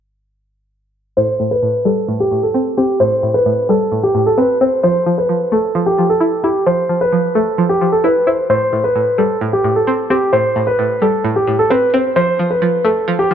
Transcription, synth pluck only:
0, 0, Header, 1, 2, 480
1, 0, Start_track
1, 0, Key_signature, 0, "minor"
1, 0, Tempo, 458015
1, 1225, Time_signature, 4, 2, 24, 8
1, 13981, End_track
2, 0, Start_track
2, 0, Title_t, "Synth pluck"
2, 0, Program_c, 0, 84
2, 1225, Note_on_c, 0, 45, 91
2, 1453, Note_off_c, 0, 45, 0
2, 1465, Note_on_c, 0, 45, 75
2, 1692, Note_off_c, 0, 45, 0
2, 1704, Note_on_c, 0, 45, 81
2, 1941, Note_on_c, 0, 55, 78
2, 2173, Note_off_c, 0, 45, 0
2, 2185, Note_on_c, 0, 45, 93
2, 2412, Note_off_c, 0, 45, 0
2, 2425, Note_on_c, 0, 45, 78
2, 2664, Note_on_c, 0, 60, 88
2, 2894, Note_off_c, 0, 60, 0
2, 2907, Note_on_c, 0, 60, 83
2, 3132, Note_off_c, 0, 45, 0
2, 3143, Note_off_c, 0, 55, 0
2, 3144, Note_on_c, 0, 45, 93
2, 3373, Note_off_c, 0, 45, 0
2, 3385, Note_on_c, 0, 45, 79
2, 3614, Note_off_c, 0, 45, 0
2, 3627, Note_on_c, 0, 45, 77
2, 3867, Note_on_c, 0, 55, 75
2, 4092, Note_off_c, 0, 45, 0
2, 4105, Note_on_c, 0, 45, 90
2, 4106, Note_off_c, 0, 60, 0
2, 4334, Note_off_c, 0, 45, 0
2, 4346, Note_on_c, 0, 45, 83
2, 4588, Note_on_c, 0, 60, 86
2, 4818, Note_off_c, 0, 60, 0
2, 4831, Note_on_c, 0, 60, 88
2, 5064, Note_on_c, 0, 53, 93
2, 5066, Note_off_c, 0, 45, 0
2, 5066, Note_off_c, 0, 55, 0
2, 5068, Note_off_c, 0, 60, 0
2, 5295, Note_off_c, 0, 53, 0
2, 5307, Note_on_c, 0, 53, 83
2, 5532, Note_off_c, 0, 53, 0
2, 5545, Note_on_c, 0, 53, 79
2, 5784, Note_on_c, 0, 57, 79
2, 6014, Note_off_c, 0, 53, 0
2, 6026, Note_on_c, 0, 53, 95
2, 6256, Note_off_c, 0, 53, 0
2, 6269, Note_on_c, 0, 53, 80
2, 6503, Note_on_c, 0, 64, 81
2, 6734, Note_off_c, 0, 64, 0
2, 6747, Note_on_c, 0, 64, 90
2, 6972, Note_off_c, 0, 53, 0
2, 6985, Note_off_c, 0, 57, 0
2, 6985, Note_on_c, 0, 53, 89
2, 7211, Note_off_c, 0, 53, 0
2, 7224, Note_on_c, 0, 53, 73
2, 7454, Note_off_c, 0, 53, 0
2, 7466, Note_on_c, 0, 53, 78
2, 7705, Note_on_c, 0, 57, 80
2, 7934, Note_off_c, 0, 53, 0
2, 7946, Note_off_c, 0, 64, 0
2, 7946, Note_on_c, 0, 53, 93
2, 8175, Note_off_c, 0, 53, 0
2, 8188, Note_on_c, 0, 53, 79
2, 8425, Note_on_c, 0, 64, 91
2, 8655, Note_off_c, 0, 64, 0
2, 8668, Note_on_c, 0, 64, 82
2, 8905, Note_off_c, 0, 57, 0
2, 8907, Note_off_c, 0, 53, 0
2, 8907, Note_off_c, 0, 64, 0
2, 8907, Note_on_c, 0, 45, 88
2, 9134, Note_off_c, 0, 45, 0
2, 9147, Note_on_c, 0, 45, 76
2, 9373, Note_off_c, 0, 45, 0
2, 9386, Note_on_c, 0, 45, 78
2, 9623, Note_on_c, 0, 55, 80
2, 9853, Note_off_c, 0, 45, 0
2, 9866, Note_on_c, 0, 45, 90
2, 10094, Note_off_c, 0, 45, 0
2, 10107, Note_on_c, 0, 45, 77
2, 10346, Note_on_c, 0, 60, 87
2, 10576, Note_off_c, 0, 60, 0
2, 10589, Note_on_c, 0, 60, 85
2, 10814, Note_off_c, 0, 45, 0
2, 10824, Note_off_c, 0, 55, 0
2, 10827, Note_on_c, 0, 45, 90
2, 11054, Note_off_c, 0, 45, 0
2, 11066, Note_on_c, 0, 45, 83
2, 11295, Note_off_c, 0, 45, 0
2, 11307, Note_on_c, 0, 45, 79
2, 11546, Note_on_c, 0, 55, 75
2, 11772, Note_off_c, 0, 45, 0
2, 11785, Note_on_c, 0, 45, 92
2, 11787, Note_off_c, 0, 60, 0
2, 12013, Note_off_c, 0, 45, 0
2, 12026, Note_on_c, 0, 45, 81
2, 12268, Note_on_c, 0, 60, 89
2, 12498, Note_off_c, 0, 60, 0
2, 12510, Note_on_c, 0, 60, 91
2, 12745, Note_on_c, 0, 53, 92
2, 12746, Note_off_c, 0, 45, 0
2, 12746, Note_off_c, 0, 55, 0
2, 12748, Note_off_c, 0, 60, 0
2, 12975, Note_off_c, 0, 53, 0
2, 12988, Note_on_c, 0, 53, 81
2, 13212, Note_off_c, 0, 53, 0
2, 13224, Note_on_c, 0, 53, 82
2, 13463, Note_on_c, 0, 57, 76
2, 13693, Note_off_c, 0, 53, 0
2, 13705, Note_on_c, 0, 53, 96
2, 13936, Note_off_c, 0, 53, 0
2, 13948, Note_on_c, 0, 53, 79
2, 13981, Note_off_c, 0, 53, 0
2, 13981, Note_off_c, 0, 57, 0
2, 13981, End_track
0, 0, End_of_file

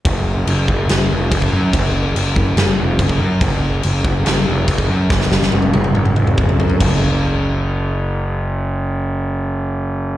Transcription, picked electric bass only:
0, 0, Header, 1, 2, 480
1, 0, Start_track
1, 0, Tempo, 421053
1, 66, Time_signature, 4, 2, 24, 8
1, 5346, Tempo, 425230
1, 11535, End_track
2, 0, Start_track
2, 0, Title_t, "Picked electric bass"
2, 0, Program_c, 0, 34
2, 61, Note_on_c, 0, 30, 98
2, 499, Note_off_c, 0, 30, 0
2, 537, Note_on_c, 0, 30, 87
2, 758, Note_off_c, 0, 30, 0
2, 785, Note_on_c, 0, 30, 95
2, 1003, Note_off_c, 0, 30, 0
2, 1023, Note_on_c, 0, 30, 96
2, 1241, Note_off_c, 0, 30, 0
2, 1270, Note_on_c, 0, 29, 87
2, 1485, Note_off_c, 0, 29, 0
2, 1504, Note_on_c, 0, 30, 92
2, 1721, Note_off_c, 0, 30, 0
2, 1750, Note_on_c, 0, 42, 91
2, 1964, Note_off_c, 0, 42, 0
2, 1978, Note_on_c, 0, 30, 96
2, 2416, Note_off_c, 0, 30, 0
2, 2456, Note_on_c, 0, 30, 90
2, 2676, Note_off_c, 0, 30, 0
2, 2697, Note_on_c, 0, 30, 95
2, 2917, Note_off_c, 0, 30, 0
2, 2929, Note_on_c, 0, 30, 97
2, 3153, Note_off_c, 0, 30, 0
2, 3177, Note_on_c, 0, 29, 87
2, 3397, Note_off_c, 0, 29, 0
2, 3406, Note_on_c, 0, 30, 99
2, 3631, Note_off_c, 0, 30, 0
2, 3653, Note_on_c, 0, 42, 100
2, 3875, Note_off_c, 0, 42, 0
2, 3887, Note_on_c, 0, 30, 95
2, 4331, Note_off_c, 0, 30, 0
2, 4386, Note_on_c, 0, 30, 92
2, 4603, Note_off_c, 0, 30, 0
2, 4614, Note_on_c, 0, 30, 95
2, 4837, Note_off_c, 0, 30, 0
2, 4853, Note_on_c, 0, 30, 94
2, 5077, Note_off_c, 0, 30, 0
2, 5101, Note_on_c, 0, 29, 95
2, 5322, Note_off_c, 0, 29, 0
2, 5335, Note_on_c, 0, 30, 101
2, 5558, Note_off_c, 0, 30, 0
2, 5581, Note_on_c, 0, 42, 90
2, 5800, Note_off_c, 0, 42, 0
2, 5816, Note_on_c, 0, 30, 97
2, 6255, Note_off_c, 0, 30, 0
2, 6298, Note_on_c, 0, 30, 88
2, 6518, Note_off_c, 0, 30, 0
2, 6534, Note_on_c, 0, 30, 95
2, 6756, Note_off_c, 0, 30, 0
2, 6780, Note_on_c, 0, 30, 100
2, 6999, Note_off_c, 0, 30, 0
2, 7012, Note_on_c, 0, 29, 83
2, 7235, Note_off_c, 0, 29, 0
2, 7254, Note_on_c, 0, 30, 95
2, 7476, Note_off_c, 0, 30, 0
2, 7489, Note_on_c, 0, 42, 93
2, 7714, Note_off_c, 0, 42, 0
2, 7742, Note_on_c, 0, 30, 101
2, 11535, Note_off_c, 0, 30, 0
2, 11535, End_track
0, 0, End_of_file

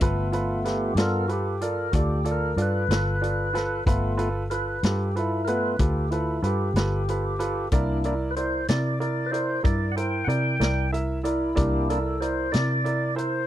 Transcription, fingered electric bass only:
0, 0, Header, 1, 2, 480
1, 0, Start_track
1, 0, Tempo, 641711
1, 12, Time_signature, 12, 3, 24, 8
1, 10075, End_track
2, 0, Start_track
2, 0, Title_t, "Fingered electric bass"
2, 0, Program_c, 0, 33
2, 7, Note_on_c, 0, 31, 88
2, 698, Note_off_c, 0, 31, 0
2, 711, Note_on_c, 0, 43, 106
2, 1410, Note_off_c, 0, 43, 0
2, 1446, Note_on_c, 0, 38, 98
2, 1898, Note_off_c, 0, 38, 0
2, 1919, Note_on_c, 0, 43, 77
2, 2145, Note_off_c, 0, 43, 0
2, 2160, Note_on_c, 0, 31, 84
2, 2855, Note_off_c, 0, 31, 0
2, 2888, Note_on_c, 0, 31, 79
2, 3579, Note_off_c, 0, 31, 0
2, 3614, Note_on_c, 0, 43, 94
2, 4303, Note_off_c, 0, 43, 0
2, 4332, Note_on_c, 0, 38, 84
2, 4782, Note_off_c, 0, 38, 0
2, 4807, Note_on_c, 0, 43, 70
2, 5030, Note_off_c, 0, 43, 0
2, 5041, Note_on_c, 0, 31, 84
2, 5738, Note_off_c, 0, 31, 0
2, 5778, Note_on_c, 0, 36, 86
2, 6467, Note_off_c, 0, 36, 0
2, 6498, Note_on_c, 0, 48, 88
2, 7187, Note_off_c, 0, 48, 0
2, 7212, Note_on_c, 0, 43, 86
2, 7664, Note_off_c, 0, 43, 0
2, 7686, Note_on_c, 0, 48, 78
2, 7911, Note_off_c, 0, 48, 0
2, 7930, Note_on_c, 0, 36, 89
2, 8624, Note_off_c, 0, 36, 0
2, 8656, Note_on_c, 0, 36, 90
2, 9346, Note_off_c, 0, 36, 0
2, 9383, Note_on_c, 0, 48, 97
2, 10070, Note_off_c, 0, 48, 0
2, 10075, End_track
0, 0, End_of_file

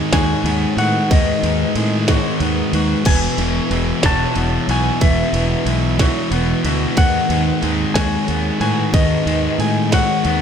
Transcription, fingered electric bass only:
0, 0, Header, 1, 2, 480
1, 0, Start_track
1, 0, Tempo, 653595
1, 810, Time_signature, 6, 3, 24, 8
1, 7650, End_track
2, 0, Start_track
2, 0, Title_t, "Fingered electric bass"
2, 0, Program_c, 0, 33
2, 91, Note_on_c, 0, 39, 103
2, 243, Note_off_c, 0, 39, 0
2, 321, Note_on_c, 0, 39, 93
2, 476, Note_off_c, 0, 39, 0
2, 565, Note_on_c, 0, 45, 101
2, 719, Note_off_c, 0, 45, 0
2, 814, Note_on_c, 0, 39, 91
2, 965, Note_off_c, 0, 39, 0
2, 1050, Note_on_c, 0, 39, 96
2, 1202, Note_off_c, 0, 39, 0
2, 1288, Note_on_c, 0, 45, 91
2, 1592, Note_off_c, 0, 45, 0
2, 1764, Note_on_c, 0, 39, 98
2, 1918, Note_off_c, 0, 39, 0
2, 2003, Note_on_c, 0, 39, 92
2, 2156, Note_off_c, 0, 39, 0
2, 2245, Note_on_c, 0, 28, 91
2, 2398, Note_off_c, 0, 28, 0
2, 2482, Note_on_c, 0, 28, 98
2, 2635, Note_off_c, 0, 28, 0
2, 2720, Note_on_c, 0, 28, 99
2, 2874, Note_off_c, 0, 28, 0
2, 2963, Note_on_c, 0, 28, 95
2, 3116, Note_off_c, 0, 28, 0
2, 3202, Note_on_c, 0, 28, 97
2, 3355, Note_off_c, 0, 28, 0
2, 3437, Note_on_c, 0, 35, 95
2, 3591, Note_off_c, 0, 35, 0
2, 3682, Note_on_c, 0, 28, 92
2, 3835, Note_off_c, 0, 28, 0
2, 3913, Note_on_c, 0, 28, 94
2, 4069, Note_off_c, 0, 28, 0
2, 4153, Note_on_c, 0, 35, 97
2, 4461, Note_off_c, 0, 35, 0
2, 4635, Note_on_c, 0, 28, 101
2, 4790, Note_off_c, 0, 28, 0
2, 4880, Note_on_c, 0, 38, 104
2, 5033, Note_off_c, 0, 38, 0
2, 5121, Note_on_c, 0, 39, 99
2, 5274, Note_off_c, 0, 39, 0
2, 5358, Note_on_c, 0, 39, 99
2, 5512, Note_off_c, 0, 39, 0
2, 5601, Note_on_c, 0, 39, 98
2, 5754, Note_off_c, 0, 39, 0
2, 5838, Note_on_c, 0, 39, 103
2, 5993, Note_off_c, 0, 39, 0
2, 6085, Note_on_c, 0, 39, 92
2, 6238, Note_off_c, 0, 39, 0
2, 6320, Note_on_c, 0, 45, 95
2, 6475, Note_off_c, 0, 45, 0
2, 6559, Note_on_c, 0, 39, 92
2, 6714, Note_off_c, 0, 39, 0
2, 6799, Note_on_c, 0, 39, 89
2, 6954, Note_off_c, 0, 39, 0
2, 7039, Note_on_c, 0, 45, 92
2, 7348, Note_off_c, 0, 45, 0
2, 7529, Note_on_c, 0, 39, 96
2, 7650, Note_off_c, 0, 39, 0
2, 7650, End_track
0, 0, End_of_file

